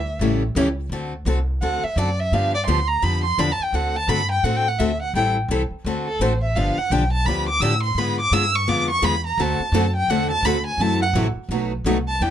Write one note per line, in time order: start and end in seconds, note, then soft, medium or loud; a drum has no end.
0.00 0.19 D2 medium
0.00 0.22 E5 medium
0.19 0.54 A1 medium
0.19 0.42 C#3 medium
0.19 0.42 E3 medium
0.19 0.42 G3 medium
0.19 0.42 A3 medium
0.19 0.42 C#4 medium
0.19 0.42 E4 medium
0.19 0.42 G4 loud
0.19 0.43 A4 medium
0.55 0.89 C#2 loud
0.55 0.67 C#3 loud
0.55 0.67 E3 loud
0.55 0.67 G3 medium
0.55 0.67 A3 loud
0.55 0.67 C#4 loud
0.55 0.68 E4 loud
0.55 0.68 G4 loud
0.55 0.68 A4 medium
0.89 1.24 D2 medium
0.89 1.12 D3 medium
0.89 1.12 A3 medium
0.89 1.13 C4 medium
0.89 1.13 F#4 medium
0.89 1.13 A4 medium
1.25 1.60 C2 medium
1.25 1.37 D3 medium
1.25 1.37 A3 medium
1.25 1.38 C4 medium
1.25 1.38 F#4 medium
1.25 1.38 A4 loud
1.61 1.82 D2 medium
1.61 1.83 D3 medium
1.61 1.83 A3 medium
1.61 1.83 C4 medium
1.61 1.83 F#4 medium
1.61 1.83 A4 medium
1.61 1.85 F#5 medium
1.83 1.99 E5 medium
1.83 muted upright bass stroke soft
1.96 2.31 F#2 medium
1.96 2.09 D3 medium
1.96 2.08 A3 loud
1.96 2.09 C4 medium
1.96 2.09 F#4 medium
1.96 2.09 A4 loud
1.96 2.21 D5 medium
2.20 2.35 E5 medium
2.32 2.66 G2 medium
2.32 2.54 D3 medium
2.32 2.54 F3 medium
2.32 2.54 B3 medium
2.32 2.54 D4 medium
2.32 2.54 G4 medium
2.32 2.54 F5 medium
2.54 2.62 D5 loud
2.67 3.02 D2 loud
2.67 2.79 D3 medium
2.67 2.79 F3 loud
2.67 2.79 B3 loud
2.67 2.79 D4 loud
2.67 2.79 G4 loud
2.67 2.89 C6 medium
2.88 3.05 A#5 loud
3.02 3.37 F2 medium
3.02 3.24 D3 medium
3.02 3.24 F3 medium
3.02 3.24 B3 medium
3.02 3.24 D4 medium
3.02 3.24 G4 medium
3.02 3.23 B5 medium
3.24 3.41 C6 loud
3.38 3.58 E2 medium
3.38 3.49 D3 loud
3.38 3.50 F3 loud
3.38 3.50 B3 loud
3.38 3.50 D4 loud
3.38 3.50 G4 medium
3.38 3.53 B5 medium
3.52 3.65 A5 loud
3.60 3.77 G5 medium
3.60 muted upright bass stroke soft
3.73 4.07 D2 medium
3.73 3.95 D3 medium
3.73 3.95 A3 medium
3.73 3.95 C4 medium
3.73 3.95 F#4 medium
3.73 3.95 A4 medium
3.73 3.98 F#5 medium
3.96 4.11 A5 loud
4.08 4.43 G2 medium
4.08 4.20 D3 medium
4.08 4.20 A3 loud
4.08 4.20 C4 medium
4.08 4.20 F#4 medium
4.08 4.20 A4 loud
4.08 4.31 B5 loud
4.31 4.45 G5 loud
4.43 4.78 A2 medium
4.43 4.65 D3 medium
4.43 4.65 A3 medium
4.43 4.65 C4 medium
4.43 4.66 F#4 medium
4.43 4.66 A4 medium
4.43 4.58 F#5 medium
4.57 4.70 G5 loud
4.68 4.80 F#5 medium
4.79 5.13 D2 medium
4.79 4.91 D3 medium
4.79 4.91 A3 medium
4.79 4.91 C4 loud
4.79 4.91 F#4 loud
4.79 4.91 A4 medium
4.79 5.01 E5 medium
5.02 5.14 F#5 medium
5.14 5.48 A1 medium
5.14 5.36 E3 medium
5.14 5.36 G3 medium
5.14 5.36 C4 medium
5.14 5.37 E4 medium
5.14 5.37 A4 medium
5.14 5.28 G5 loud
5.49 5.70 C2 medium
5.49 5.62 E3 medium
5.49 5.62 G3 loud
5.49 5.62 C4 medium
5.49 5.62 E4 medium
5.49 5.62 A4 medium
5.71 muted upright bass stroke soft
5.84 6.19 D2 medium
5.84 6.07 D3 medium
5.84 6.07 A3 medium
5.84 6.07 C4 medium
5.84 6.07 F#4 medium
5.84 6.07 A4 medium
6.07 6.23 A4 medium
6.19 6.54 A1 medium
6.19 6.32 D3 loud
6.19 6.32 A3 medium
6.19 6.32 C4 medium
6.19 6.32 F#4 medium
6.19 6.32 A4 loud
6.19 6.43 C5 medium
6.43 6.58 E5 medium
6.55 6.76 G1 medium
6.55 6.77 D3 medium
6.55 6.77 F3 medium
6.55 6.77 B3 medium
6.55 6.77 D4 medium
6.55 6.77 G4 medium
6.55 6.80 F5 medium
6.77 6.93 F#5 loud
6.77 muted upright bass stroke soft
6.90 7.25 B1 medium
6.90 7.02 D3 medium
6.90 7.03 F3 medium
6.90 7.03 B3 medium
6.90 7.03 D4 medium
6.90 7.03 G4 loud
6.90 7.12 G5 medium
7.13 7.27 A5 medium
7.25 7.59 D2 medium
7.25 7.48 D3 medium
7.25 7.48 F3 medium
7.25 7.48 B3 medium
7.25 7.48 D4 medium
7.25 7.48 G4 medium
7.25 7.48 B5 medium
7.49 7.63 D6 loud
7.60 7.94 A2 medium
7.60 7.73 D3 medium
7.60 7.73 F3 medium
7.60 7.73 B3 loud
7.60 7.73 D4 loud
7.60 7.73 G4 loud
7.60 7.83 E6 loud
7.83 8.00 C6 loud
7.95 8.30 G#2 medium
7.95 8.18 D3 medium
7.95 8.18 G#3 medium
7.95 8.19 B3 medium
7.95 8.19 F4 medium
7.95 8.19 G#4 medium
7.95 8.20 B5 medium
8.21 8.35 D6 loud
8.31 8.66 G2 medium
8.31 8.44 D3 loud
8.31 8.44 G#3 medium
8.31 8.44 B3 loud
8.31 8.44 F4 loud
8.31 8.44 G#4 loud
8.31 8.57 E6 loud
8.56 8.70 C#6 loud
8.68 9.02 F2 medium
8.68 8.89 D3 medium
8.68 8.89 G#3 medium
8.68 8.89 B3 medium
8.68 8.89 F4 medium
8.68 8.89 G#4 medium
8.68 8.90 D6 loud
8.91 9.06 C#6 loud
9.02 9.37 E2 medium
9.02 9.14 D3 medium
9.02 9.14 G#3 loud
9.02 9.14 B3 loud
9.02 9.14 F4 loud
9.02 9.14 G#4 loud
9.02 9.26 B5 loud
9.27 9.42 A#5 loud
9.38 9.58 D2 loud
9.38 9.60 D3 medium
9.38 9.60 A3 medium
9.38 9.60 C4 medium
9.38 9.60 F#4 medium
9.38 9.60 A4 medium
9.38 9.96 A5 medium
9.60 muted upright bass stroke soft
9.72 10.07 F#2 loud
9.72 9.85 D3 loud
9.72 9.85 A3 medium
9.72 9.85 C4 loud
9.72 9.85 F#4 loud
9.72 9.85 A4 loud
9.96 10.12 G5 loud
10.08 10.42 E2 medium
10.08 10.30 D3 medium
10.08 10.31 A3 medium
10.08 10.30 C4 medium
10.08 10.30 F#4 medium
10.08 10.31 A4 medium
10.08 10.31 F#5 loud
10.31 10.47 A5 loud
10.43 10.77 D2 loud
10.43 10.56 D3 loud
10.43 10.56 A3 loud
10.43 10.56 C4 loud
10.43 10.56 F#4 loud
10.43 10.56 A4 loud
10.43 10.66 B5 loud
10.66 10.82 G#5 medium
10.77 11.13 F#2 medium
10.77 11.01 C3 medium
10.77 11.01 E3 medium
10.77 11.00 F#3 medium
10.77 11.01 A3 medium
10.77 11.01 C4 medium
10.77 11.01 E4 medium
10.77 11.01 F#4 medium
10.77 11.01 A4 medium
10.77 11.02 A5 loud
11.02 11.10 F#5 loud
11.13 11.34 A1 medium
11.13 11.26 C3 medium
11.13 11.26 E3 loud
11.13 11.26 F#3 medium
11.13 11.26 A3 loud
11.13 11.26 C4 loud
11.13 11.26 E4 loud
11.13 11.26 F#4 medium
11.13 11.27 A4 loud
11.35 muted upright bass stroke soft
11.49 11.84 B1 medium
11.49 11.71 B2 medium
11.49 11.71 F#3 medium
11.49 11.72 A3 medium
11.49 11.72 D#4 medium
11.49 11.72 F#4 medium
11.49 11.72 B4 medium
11.84 12.19 C2 medium
11.84 11.97 B2 loud
11.84 11.97 F#3 medium
11.84 11.97 A3 loud
11.84 11.97 D#4 loud
11.84 11.97 F#4 loud
11.84 11.97 B4 loud
12.08 12.23 A5 medium
12.20 12.30 E2 medium
12.20 12.30 E3 medium
12.20 12.30 G3 medium
12.20 12.30 B3 medium
12.20 12.30 D4 medium
12.20 12.30 E4 medium
12.20 12.30 G4 medium
12.20 12.30 B4 medium
12.20 12.30 G5 medium